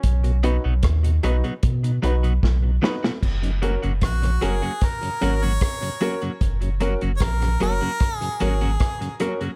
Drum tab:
CC |----------------|x---------------|----------------|
HH |xxx-xxxxxxxx----|-xxxxxxxxxx-xxxx|xxxxxxxxxxxxxxxx|
SD |----r-------o-oo|----rr--r---r---|----rr--r---r---|
BD |o---o---o---o---|o---o---o---o---|o---o---o---o---|